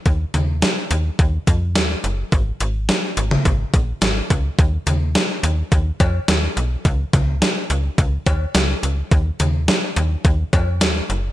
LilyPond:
<<
  \new Staff \with { instrumentName = "FM bass" } { \clef bass \time 4/4 \key ees \minor \tempo 4 = 106 ees,8 ees,8. r16 ees,8 ees,8 f,8 ees,8 ges,,8 | aes,,8 aes,,8. r16 aes,,8 aes,,8 bes,,8 aes,,8 des,8 | ees,8 ees,8. r16 ees,8 ees,8 f,8 ees,8 ces,8 | des,8 des,8. r16 des,8 des,8 ees,8 des,8 des,8 |
ees,8 ees,8. r16 ees,8 ees,8 f,8 ees,8 ges,,8 | }
  \new DrumStaff \with { instrumentName = "Drums" } \drummode { \time 4/4 <hh bd>8 <hh toml>8 <hh sn>8 hh8 <hh bd>8 <hh bd>8 <hh sn>8 hh8 | <hh bd>8 hh8 <hh sn>8 hh16 toml16 <hh bd>8 <hh bd>8 <hh sn>8 <hh bd>8 | <hh bd>8 <hh toml>8 <hh sn>8 hh8 <hh bd>8 <cb hh bd>8 <hh sn>8 hh8 | <hh bd>8 <hh bd toml>8 <hh sn>8 hh8 <hh bd>8 <cb hh bd>8 <hh sn>8 hh8 |
<hh bd>8 <hh toml>8 <hh sn>8 hh8 <hh bd>8 <cb hh bd>8 <hh sn>8 hh8 | }
>>